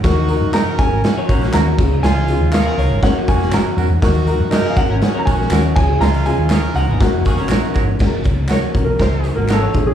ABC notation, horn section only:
X:1
M:4/4
L:1/16
Q:1/4=121
K:F#
V:1 name="Horn section"
[A,DF]4 [CFA]4 [A,CF]2 [A,CF]4 z2 | [G,CE]4 [CEA]4 [A,CF]2 [A,CF]4 z2 | [A,DF]4 [CFA]4 [A,CF]2 [A,CF]4 z2 | [G,CE]4 [CEA]4 [A,CF]2 [A,CF]4 z2 |
z8 [CFA]3 z4 z |]